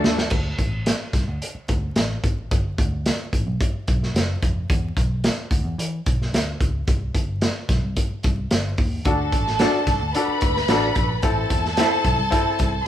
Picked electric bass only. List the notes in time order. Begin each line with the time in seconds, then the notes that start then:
0.04 D#2
0.31 D2
0.59 A1
1.13 C2
1.28 D2
1.55 muted picked electric bass stroke
1.69 D2
1.96 A1
2.24 G#1
2.51 G1
2.79 D2
3.33 A1
3.47 B1
3.74 muted picked electric bass stroke
3.88 B1
4.14 F#1
4.42 F1
4.70 E2
4.97 B1
5.51 D2
5.64 E2
5.78 E3
6.07 B1
6.33 D2
6.61 C#2
6.88 C2
7.15 G1
7.69 B1
7.84 C2
8.11 muted picked electric bass stroke
8.24 C2
8.52 G1
8.79 D#2
9.05 D2
9.33 A1
9.87 C2
10.02 D2
10.28 muted picked electric bass stroke
10.42 D2
10.69 A1
10.96 A#1
11.23 A1
11.50 E2
12.04 B1
12.18 C2
12.45 muted picked electric bass stroke
12.60 C2